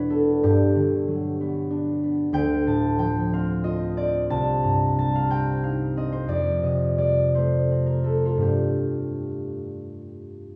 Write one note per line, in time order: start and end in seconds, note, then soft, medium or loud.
0.00 0.43 E2 medium
0.00 0.43 B2 medium
0.00 2.36 G3 medium
0.00 1.69 D4 medium
0.00 2.36 B4 medium
0.00 3.05 D5 medium
0.00 0.43 E5 medium
0.09 1.39 B3 soft
0.09 0.64 A4 medium
0.43 2.37 G2 medium
0.43 2.36 G4 medium
0.75 2.36 D3 medium
1.08 2.36 F#3 medium
1.41 2.02 B3 medium
1.70 4.33 D4 medium
2.04 2.36 B3 medium
2.33 4.33 D2 medium
2.33 2.88 G5 loud
2.67 4.33 A2 medium
2.67 4.29 A5 medium
2.98 4.33 F3 medium
2.98 3.54 G5 loud
3.33 3.96 C4 medium
3.33 4.34 F5 loud
3.64 4.33 F4 medium
3.64 4.20 D#5 medium
3.97 5.29 C4 medium
3.97 4.33 D5 medium
4.30 6.31 C2 medium
4.30 4.87 A5 loud
4.63 6.31 G2 medium
4.63 6.31 A#5 medium
4.98 6.97 G3 medium
4.98 5.25 A5 loud
5.15 5.42 F5 medium
5.30 5.95 C4 medium
5.30 9.21 G5 loud
5.63 6.31 D#4 medium
5.63 6.19 F5 medium
5.96 7.70 C4 medium
5.96 6.32 D#5 medium
6.12 6.40 C5 medium
6.28 8.44 F2 medium
6.28 6.86 D5 loud
6.63 8.45 C3 soft
6.63 7.22 D#5 medium
6.98 8.37 G3 soft
6.98 7.58 D5 medium
7.35 8.03 A3 soft
7.35 8.46 C5 medium
7.71 8.46 C4 soft
7.86 8.17 A#4 medium
8.04 8.39 A3 soft
8.04 10.56 A4 medium
8.25 8.39 F4 medium
8.37 10.56 G2 medium
8.37 10.56 G3 soft
8.37 10.56 A3 soft
8.37 10.56 F4 soft
8.42 10.56 G4 medium